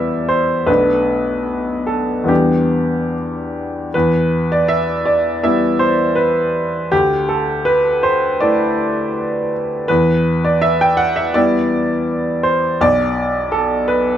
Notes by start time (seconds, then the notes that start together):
Already playing: E2 G3 B3 E4 D5 E5
0.29 C5
0.67 B1 A3 B3 D4 B4
1.87 A4
2.24 E2 G3 B3 D4
2.28 G4
3.94 E2 B4
4.52 D5
4.68 E5
5.06 D5
5.44 G3 B3 E4 E5
5.79 C5
6.16 B4
6.91 D2 G4
7.29 A4
7.65 B4
8.03 C5
8.40 A3 E4 D5
9.88 E2 B4
10.45 D5
10.62 E5
10.81 G5
10.97 F#5
11.16 E5
11.34 G3 B3 E4 D5
12.43 C5
12.81 B1 D5
13.52 A4
13.88 B4